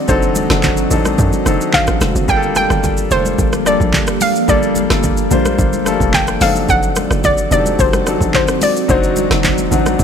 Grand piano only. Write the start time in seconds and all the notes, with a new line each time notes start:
Already playing: F#3 C4 D4 D#4 G#4 A4 C5
0.08 F#3 C4 D4 D#4 A4
0.50 F#3 C4 D4 D#4 F#4
0.90 D#3 C4 D4 D#4 A4
0.97 F#3
1.45 F#3 C4 D4 D#4 A4
2.28 G3 A#3 D4 F4 G#4
2.37 A4
3.11 G3 A#3 D4 F4 A4
3.65 G3 A#3 D4 F4 A4
4.48 G3 A#3 D4 F4 A4
4.90 G3 A#3 D4 F4 A4
5.30 G3 A#3 D4 F4 C5
5.85 G3 A3 D4 F4 A4
5.92 A#3
6.40 F3 C4 D4 D#4 A4
6.47 F#3
7.51 F#3 C4 D4 D#4 G4
7.59 A4
8.06 F#3 C4 D4 D#4 A4
8.88 F#3 C4 D4 D#4 F#4
9.30 F#3 C4 D4 D#4 F#4
9.71 F#3 C4 D4 D#4 F#4